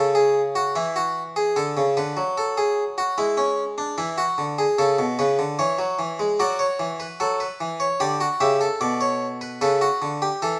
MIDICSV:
0, 0, Header, 1, 2, 480
1, 0, Start_track
1, 0, Tempo, 805369
1, 1891, Time_signature, 4, 2, 24, 8
1, 6315, End_track
2, 0, Start_track
2, 0, Title_t, "Harpsichord"
2, 0, Program_c, 0, 6
2, 0, Note_on_c, 0, 49, 51
2, 0, Note_on_c, 0, 69, 65
2, 86, Note_off_c, 0, 69, 0
2, 89, Note_on_c, 0, 68, 76
2, 239, Note_off_c, 0, 68, 0
2, 330, Note_on_c, 0, 66, 68
2, 436, Note_off_c, 0, 49, 0
2, 448, Note_off_c, 0, 66, 0
2, 450, Note_on_c, 0, 64, 72
2, 451, Note_on_c, 0, 52, 64
2, 568, Note_off_c, 0, 64, 0
2, 572, Note_on_c, 0, 66, 68
2, 721, Note_off_c, 0, 66, 0
2, 812, Note_on_c, 0, 68, 68
2, 918, Note_off_c, 0, 52, 0
2, 929, Note_off_c, 0, 68, 0
2, 932, Note_on_c, 0, 50, 58
2, 932, Note_on_c, 0, 69, 69
2, 1049, Note_off_c, 0, 50, 0
2, 1054, Note_on_c, 0, 49, 55
2, 1081, Note_off_c, 0, 69, 0
2, 1170, Note_off_c, 0, 49, 0
2, 1174, Note_on_c, 0, 50, 58
2, 1175, Note_on_c, 0, 71, 71
2, 1290, Note_off_c, 0, 50, 0
2, 1292, Note_on_c, 0, 54, 60
2, 1322, Note_off_c, 0, 71, 0
2, 1416, Note_on_c, 0, 69, 76
2, 1530, Note_off_c, 0, 69, 0
2, 1535, Note_on_c, 0, 68, 75
2, 1682, Note_off_c, 0, 68, 0
2, 1776, Note_on_c, 0, 66, 70
2, 1872, Note_off_c, 0, 54, 0
2, 1890, Note_off_c, 0, 66, 0
2, 1894, Note_on_c, 0, 56, 59
2, 1895, Note_on_c, 0, 64, 69
2, 2009, Note_off_c, 0, 64, 0
2, 2011, Note_on_c, 0, 61, 76
2, 2159, Note_off_c, 0, 61, 0
2, 2252, Note_on_c, 0, 62, 67
2, 2357, Note_off_c, 0, 56, 0
2, 2367, Note_off_c, 0, 62, 0
2, 2371, Note_on_c, 0, 52, 69
2, 2371, Note_on_c, 0, 64, 79
2, 2486, Note_off_c, 0, 64, 0
2, 2490, Note_on_c, 0, 66, 76
2, 2519, Note_off_c, 0, 52, 0
2, 2611, Note_on_c, 0, 50, 60
2, 2638, Note_off_c, 0, 66, 0
2, 2732, Note_on_c, 0, 68, 75
2, 2759, Note_off_c, 0, 50, 0
2, 2847, Note_off_c, 0, 68, 0
2, 2852, Note_on_c, 0, 49, 63
2, 2852, Note_on_c, 0, 69, 78
2, 2966, Note_off_c, 0, 49, 0
2, 2971, Note_on_c, 0, 47, 60
2, 2999, Note_off_c, 0, 69, 0
2, 3086, Note_off_c, 0, 47, 0
2, 3093, Note_on_c, 0, 49, 62
2, 3093, Note_on_c, 0, 71, 78
2, 3206, Note_off_c, 0, 49, 0
2, 3212, Note_on_c, 0, 50, 65
2, 3239, Note_off_c, 0, 71, 0
2, 3326, Note_off_c, 0, 50, 0
2, 3331, Note_on_c, 0, 52, 66
2, 3331, Note_on_c, 0, 73, 83
2, 3445, Note_off_c, 0, 52, 0
2, 3449, Note_on_c, 0, 54, 63
2, 3564, Note_off_c, 0, 54, 0
2, 3568, Note_on_c, 0, 52, 62
2, 3684, Note_off_c, 0, 52, 0
2, 3692, Note_on_c, 0, 56, 66
2, 3795, Note_off_c, 0, 73, 0
2, 3806, Note_off_c, 0, 56, 0
2, 3812, Note_on_c, 0, 54, 64
2, 3814, Note_on_c, 0, 66, 61
2, 3814, Note_on_c, 0, 74, 77
2, 3927, Note_off_c, 0, 74, 0
2, 3929, Note_on_c, 0, 73, 77
2, 3959, Note_off_c, 0, 54, 0
2, 4050, Note_on_c, 0, 52, 64
2, 4077, Note_off_c, 0, 73, 0
2, 4171, Note_on_c, 0, 71, 71
2, 4198, Note_off_c, 0, 52, 0
2, 4277, Note_off_c, 0, 66, 0
2, 4286, Note_off_c, 0, 71, 0
2, 4292, Note_on_c, 0, 54, 70
2, 4292, Note_on_c, 0, 69, 78
2, 4406, Note_off_c, 0, 69, 0
2, 4412, Note_on_c, 0, 71, 74
2, 4439, Note_off_c, 0, 54, 0
2, 4533, Note_on_c, 0, 52, 67
2, 4559, Note_off_c, 0, 71, 0
2, 4648, Note_on_c, 0, 73, 76
2, 4680, Note_off_c, 0, 52, 0
2, 4764, Note_off_c, 0, 73, 0
2, 4769, Note_on_c, 0, 74, 81
2, 4770, Note_on_c, 0, 50, 66
2, 4771, Note_on_c, 0, 67, 65
2, 4886, Note_off_c, 0, 67, 0
2, 4890, Note_on_c, 0, 66, 65
2, 4918, Note_off_c, 0, 50, 0
2, 4918, Note_off_c, 0, 74, 0
2, 5005, Note_off_c, 0, 66, 0
2, 5009, Note_on_c, 0, 49, 63
2, 5010, Note_on_c, 0, 67, 66
2, 5010, Note_on_c, 0, 76, 75
2, 5125, Note_off_c, 0, 67, 0
2, 5130, Note_on_c, 0, 69, 62
2, 5158, Note_off_c, 0, 49, 0
2, 5158, Note_off_c, 0, 76, 0
2, 5250, Note_on_c, 0, 47, 69
2, 5250, Note_on_c, 0, 74, 81
2, 5366, Note_off_c, 0, 74, 0
2, 5368, Note_on_c, 0, 73, 77
2, 5518, Note_off_c, 0, 73, 0
2, 5610, Note_on_c, 0, 71, 73
2, 5713, Note_off_c, 0, 69, 0
2, 5716, Note_off_c, 0, 47, 0
2, 5723, Note_off_c, 0, 71, 0
2, 5730, Note_on_c, 0, 49, 62
2, 5730, Note_on_c, 0, 71, 63
2, 5731, Note_on_c, 0, 69, 72
2, 5847, Note_off_c, 0, 69, 0
2, 5849, Note_on_c, 0, 66, 77
2, 5880, Note_off_c, 0, 49, 0
2, 5971, Note_on_c, 0, 50, 64
2, 5999, Note_off_c, 0, 66, 0
2, 6091, Note_on_c, 0, 67, 75
2, 6120, Note_off_c, 0, 50, 0
2, 6198, Note_off_c, 0, 71, 0
2, 6208, Note_off_c, 0, 67, 0
2, 6212, Note_on_c, 0, 69, 81
2, 6213, Note_on_c, 0, 52, 71
2, 6315, Note_off_c, 0, 52, 0
2, 6315, Note_off_c, 0, 69, 0
2, 6315, End_track
0, 0, End_of_file